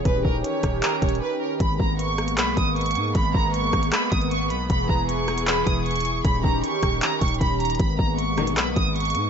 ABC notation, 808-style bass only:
X:1
M:4/4
L:1/8
Q:1/4=155
K:G#m
V:1 name="808-style bass" clef=bass
D,,, D,,, z D,,, z D,,, z2 | G,,, G,,,3 B,,, G,,,2 G,, | G,,, G,,,2 G,,, z G,,,2 B,,, | E,,, E,,,4 E,,,3 |
D,,, D,,, z D,,, z D,,, D,,,2 | G,,, G,,,3 B,,, G,,,2 G,, |]